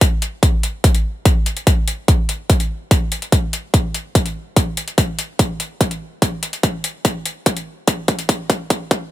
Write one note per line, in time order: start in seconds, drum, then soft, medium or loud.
0.01 kick medium
0.01 closed hi-hat medium
0.22 closed hi-hat medium
0.43 kick medium
0.43 closed hi-hat medium
0.63 closed hi-hat soft
0.84 kick medium
0.84 closed hi-hat medium
0.95 closed hi-hat soft
1.25 kick loud
1.25 closed hi-hat medium
1.46 closed hi-hat soft
1.57 closed hi-hat soft
1.67 kick loud
1.67 closed hi-hat medium
1.88 closed hi-hat medium
2.08 kick medium
2.08 closed hi-hat medium
2.29 closed hi-hat soft
2.50 kick medium
2.50 closed hi-hat medium
2.60 closed hi-hat soft
2.91 kick medium
2.91 closed hi-hat medium
3.12 closed hi-hat soft
3.22 closed hi-hat soft
3.32 kick medium
3.32 closed hi-hat medium
3.53 closed hi-hat medium
3.74 kick loud
3.74 closed hi-hat medium
3.94 closed hi-hat soft
4.15 kick medium
4.15 closed hi-hat medium
4.26 closed hi-hat soft
4.57 kick loud
4.57 closed hi-hat medium
4.77 closed hi-hat medium
4.88 closed hi-hat soft
4.98 kick loud
4.98 closed hi-hat medium
5.19 closed hi-hat medium
5.39 kick loud
5.39 closed hi-hat medium
5.60 closed hi-hat soft
5.81 kick loud
5.81 closed hi-hat medium
5.91 closed hi-hat soft
6.22 kick loud
6.22 closed hi-hat medium
6.43 closed hi-hat medium
6.53 closed hi-hat soft
6.63 kick loud
6.63 closed hi-hat medium
6.84 closed hi-hat medium
7.05 kick loud
7.05 closed hi-hat medium
7.26 closed hi-hat medium
7.46 kick loud
7.46 closed hi-hat medium
7.57 closed hi-hat soft
7.87 kick loud
7.87 closed hi-hat medium
8.08 kick loud
8.08 closed hi-hat medium
8.19 closed hi-hat soft
8.29 kick loud
8.29 closed hi-hat medium
8.50 kick loud
8.50 closed hi-hat medium
8.70 kick loud
8.70 closed hi-hat medium
8.91 kick loud
8.91 closed hi-hat medium